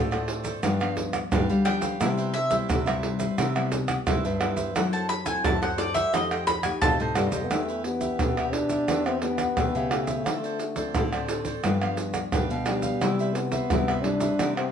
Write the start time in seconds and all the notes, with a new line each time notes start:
Already playing: A2 A4 C5
0.11 A3 C4 F4 A4 C5 D5, pandeiro, tamborim, maracas
0.28 pandeiro
0.43 A4 C5 D5, pandeiro, maracas, surdo
0.62 G2 F3 B3 D4 G4 B4 F5, pandeiro, tamborim, maracas, surdo
0.80 F3 B3 D4 G4 B4 F5, pandeiro, tamborim, maracas
0.96 muted cavaquinho stroke, pandeiro, surdo
1.13 pandeiro, tamborim, maracas, surdo
1.31 G2 D3 F3 B3 D4 G4 B4 F5, pandeiro, tamborim, maracas, surdo
1.49 G3 G4 B4 F5, pandeiro, maracas
1.65 F3 B3 D4 G4 B4 F5 G5, pandeiro, tamborim
1.81 G4 B4 F5, pandeiro, maracas, surdo
2.00 C3 G3 B3 E4 B4 C5 E5, pandeiro, tamborim, maracas, surdo
2.18 B4 C5 E5, pandeiro, maracas
2.34 E5, muted cavaquinho stroke, pandeiro, maracas
2.50 G3 B3 E4 B4 C5 E5, pandeiro, maracas, surdo
2.68 G2 C3 E4 B4 C5 E5, pandeiro, tamborim, maracas, surdo
2.86 G3 E4 B4 C5 E5, pandeiro, tamborim, maracas
3.03 pandeiro
3.19 B4 C5 E5, pandeiro, maracas, surdo
3.37 C3 E4 B4 C5 E5, pandeiro, tamborim, maracas, surdo
3.55 G3 B3 E4 B4 C5 E5, pandeiro, tamborim, maracas
3.71 muted cavaquinho stroke, pandeiro, maracas, surdo
3.88 pandeiro, tamborim, maracas, surdo
4.07 G2 C3 G3 B3 E4 B4 C5 E5, pandeiro, tamborim, maracas, surdo
4.24 G2 B4 C5 E5, pandeiro, maracas
4.40 G3 B3 E4 B4 C5 E5, pandeiro, tamborim
4.56 B4 C5 E5, pandeiro, maracas, surdo
4.75 F#2 F#3 C4 E4 A4 C5 F#5, pandeiro, tamborim, maracas, surdo
4.93 A4 C5 F#5 A5, pandeiro, maracas
5.09 B5, muted cavaquinho stroke, pandeiro, maracas
5.26 C4 E4 A4 C5 F#5 G#5, pandeiro, maracas, surdo
5.44 F#2 F#3 E4 A4 C5 F#5 A5, pandeiro, tamborim, maracas, surdo
5.62 A4 C5 F#5, pandeiro, tamborim, maracas
5.78 C4 E4 A4 D5, pandeiro, maracas
5.94 A4 C5 E5 F#5, pandeiro, maracas, surdo
6.13 F2 F3 A3 D#4 F4 G4 A4 C5 D#5, pandeiro, tamborim, maracas, surdo
6.31 A4 C5 D#5 G5, pandeiro, tamborim, maracas
6.47 B5, muted cavaquinho stroke, pandeiro, maracas, surdo
6.63 A3 D#4 G4 G#5, pandeiro, tamborim, maracas, surdo
6.82 F2 C3 F4 A4 C5 D#5 A5, pandeiro, tamborim, maracas, surdo
7.00 A2 A4 C5 D#5, pandeiro, maracas
7.15 G2 G3 A3 D#4 F4 G4 A4 C5 D#5, pandeiro, tamborim, maracas
7.32 F2 A4 C5 D#5, pandeiro, maracas, surdo
7.43 B3
7.50 E2 E3 A3 B3 D4 G4 B4 E5, pandeiro, tamborim, maracas, surdo
7.68 G4 B4 E5, pandeiro, maracas
7.84 B3 D4 G4, muted cavaquinho stroke, pandeiro
8.01 G4 B4 E5, pandeiro, maracas, surdo
8.19 E2 B2 D4 G4 B4 E5, pandeiro, tamborim, maracas, surdo
8.37 B3 D4 G4 B4 E5, pandeiro, tamborim, maracas
8.53 D4, pandeiro
8.69 G4 B4 E5, pandeiro, maracas, surdo
8.88 E2 E3 B3 D4 G4 B4 E5, pandeiro, tamborim, maracas, surdo
9.06 C4 G4 B4 E5, pandeiro, tamborim, maracas
9.22 B3 D4 G4, muted cavaquinho stroke, pandeiro
9.38 pandeiro, tamborim, maracas, surdo
9.57 E2 B2 D4 G4 B4 E5, pandeiro, tamborim, maracas, surdo
9.75 C#3 B3 G4 B4 E5, pandeiro, maracas
9.91 A3 D4 G4 B4 E5, pandeiro, tamborim
10.07 G4 B4 E5, pandeiro, maracas, surdo
10.26 D3 A3 C4 F4 A4 C5 D5, pandeiro, tamborim, maracas, surdo
10.44 A4 C5 D5, pandeiro, maracas
10.59 muted cavaquinho stroke, pandeiro, maracas
10.76 A3 C4 F4 A4 C5 D5, pandeiro, maracas, surdo
10.95 A2 D3 F4 A4 C5 D5, pandeiro, tamborim, maracas, surdo
11.13 A3 C4 F4 A4 C5 D5, pandeiro, tamborim, maracas
11.28 pandeiro, maracas
11.45 A4 C5 D5, pandeiro, maracas, surdo
11.64 G2 F3 B3 D4 G4 B4 F5, pandeiro, tamborim, maracas, surdo
11.81 F3 B3 D4 G4 B4 F5, pandeiro, tamborim, maracas
11.97 muted cavaquinho stroke, pandeiro, maracas
12.14 pandeiro, tamborim, maracas, surdo
12.32 G2 D3 F3 B3 D4 G4 B4 F5, pandeiro, tamborim, maracas, surdo
12.50 B2 G4 B4 F5, pandeiro, maracas
12.66 F3 G3 B3 D4 G4 B4 F5, pandeiro, tamborim, maracas
12.82 G4 B4 F5, pandeiro, maracas, surdo
13.01 C3 G3 B3 E4 B4 C5 E5, pandeiro, tamborim, maracas, surdo
13.19 B4 C5 E5, pandeiro, maracas
13.34 B3, muted cavaquinho stroke, pandeiro, maracas
13.52 B4 C5 E5, pandeiro, maracas, surdo
13.70 G2 C3 G3 B3 E4 B4 C5 E5, pandeiro, tamborim, maracas, surdo
13.88 B4 C5 E5, pandeiro, tamborim, maracas
14.03 G3 B3 D4 E4, pandeiro
14.20 B4 C5 E5, pandeiro, maracas, surdo
14.39 C3 G3 B3 E4 B4 C5 E5, pandeiro, tamborim, maracas, surdo
14.56 C4 B4 C5 E5, pandeiro, tamborim, maracas